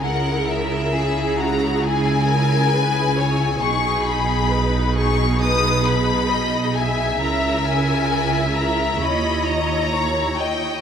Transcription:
<<
  \new Staff \with { instrumentName = "Violin section" } { \time 4/4 \key gis \minor \tempo 4 = 67 fis''8 e''4 ais''8 gis''2 | cis'''8 b''4 cis'''8 dis'''8 b''4 gis''8 | ais''8 gis''4 ais''8 b''8 ais''4 g''8 | }
  \new Staff \with { instrumentName = "Violin section" } { \time 4/4 \key gis \minor ais'4 gis'8 fis'8 gis'8 ais'8 b'8 cis''8 | gis'4 b'8 gis'8 b'4 dis''8 e''8~ | e''4 e''4 dis''4 cis''8 dis''8 | }
  \new Staff \with { instrumentName = "Viola section" } { \time 4/4 \key gis \minor << { gis'1 | gis'1 | ais'2 cis''2 | } \\ { e'1 | dis'1 | e'1 | } >> }
  \new Staff \with { instrumentName = "Cello section" } { \clef bass \time 4/4 \key gis \minor cis1 | b,1 | cis2 dis,2 | }
  \new Staff \with { instrumentName = "Double bass section" } { \clef bass \time 4/4 \key gis \minor cis,1 | b,,1 | cis,2 dis,2 | }
>>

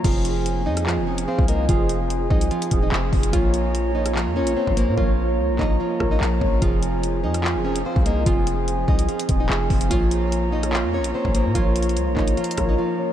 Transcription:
<<
  \new Staff \with { instrumentName = "Glass harmonica" } { \time 4/4 \key f \minor \tempo 4 = 146 << { <c'' aes''>1~ | <c'' aes''>1 | <des'' bes''>1~ | <des'' bes''>1 |
<c'' aes''>1~ | <c'' aes''>1 | <des'' bes''>1~ | <des'' bes''>1 | } \\ { f'1~ | f'1~ | f'1~ | f'1~ |
f'1~ | f'1 | f'1~ | f'1 | } >> }
  \new Staff \with { instrumentName = "Soft synth lead" } { \time 4/4 \key f \minor r2. f''8 ees''8 | r1 | r2. des''8 c''8 | r2 r8 bes'4 des''8 |
r2. f''8 ees''8 | r1 | r2. des''8 c''8 | r2 r8 bes'4 des''8 | }
  \new Staff \with { instrumentName = "Nylon-string guitar" } { \time 4/4 \key f \minor <f f'>4. <ees' ees''>8 <f f'>8 <des' des''>8 <c' c''>8 <bes bes'>8 | <f f'>4. <ees' ees''>8 <f f'>8. <ees' ees''>16 <f f'>4 | <f f'>4. <ees' ees''>8 <f f'>8 <des' des''>8 <c' c''>8 <bes bes'>8 | <f f'>4. <ees' ees''>8 <f f'>8. <ees' ees''>16 <f f'>4 |
<f f'>4. <ees' ees''>8 <f f'>8 <des' des''>8 <c' c''>8 <bes bes'>8 | <f f'>4. <ees' ees''>8 <f f'>8. <ees' ees''>16 <f f'>4 | <f f'>4. <ees' ees''>8 <f f'>8 <des' des''>8 <c' c''>8 <bes bes'>8 | <f f'>4. <ees' ees''>8 <f f'>8. <ees' ees''>16 <f f'>4 | }
  \new Staff \with { instrumentName = "Tine electric piano" } { \time 4/4 \key f \minor <f c' aes'>4 r8 <f c' aes'>4 <f c' aes'>4 r8 | <f c' aes'>4 r8 <f c' aes'>4 <f c' aes'>4 r8 | <bes f' des''>4 r8 <bes f' des''>4 <bes f' des''>4 r8 | <bes f' des''>4 r8 <bes f' des''>4 <bes f' des''>4 r8 |
<f c' aes'>4 r8 <f c' aes'>4 <f c' aes'>4 r8 | <f c' aes'>4 r8 <f c' aes'>4 <f c' aes'>4 r8 | <bes f' des''>4 r8 <bes f' des''>4 <bes f' des''>4 r8 | <bes f' des''>4 r8 <bes f' des''>4 <bes f' des''>4 r8 | }
  \new Staff \with { instrumentName = "808-style bass" } { \clef bass \time 4/4 \key f \minor f,,4. f,8. f,,8. r16 c,8. | f,,4. c,8 r8 ees,,8 f,,8 f,,8 | bes,,2~ bes,,16 f,16. bes,,16. r16 bes,,8 bes,16 | bes,,4 des,16 bes,,16 bes,,8 r8 bes,,8 bes,,8 bes,,8 |
f,,4. f,8. f,,8. r16 c,8. | f,,4. c,8 r8 ees,,8 f,,8 f,,8 | bes,,2~ bes,,16 f,16. bes,,16. r16 bes,,8 bes,16 | bes,,4 des,16 bes,,16 bes,,8 r8 bes,,8 r4 | }
  \new DrumStaff \with { instrumentName = "Drums" } \drummode { \time 4/4 <cymc hh bd>8 hh8 hh8. <hh ss>16 hc8. hh16 r16 bd16 hh8 | <hh bd>8 hh8 hh8 bd16 hh16 hh16 hh16 <hh bd>8 hc8 <hho bd>16 hh16 | <hh bd>8 hh8 hh8. <hh ss>16 hc8. hh16 r16 bd16 hh8 | bd4 r8 <hc bd>8 r8 <bd ss>8 hc8 bd8 |
<hh bd>8 hh8 hh8. <hh ss>16 hc8. hh16 r16 bd16 hh8 | <hh bd>8 hh8 hh8 bd16 hh16 hh16 hh16 <hh bd>8 hc8 <hho bd>16 hh16 | <hh bd>8 hh8 hh8. <hh ss>16 hc8. hh16 r16 bd16 hh8 | \tuplet 3/2 { <hh bd>16 r16 r16 hh16 hh16 hh16 } hh8 <hc bd>16 hh16 \tuplet 3/2 { hh16 hh16 hh16 <hh bd ss>16 r16 r16 } r4 | }
>>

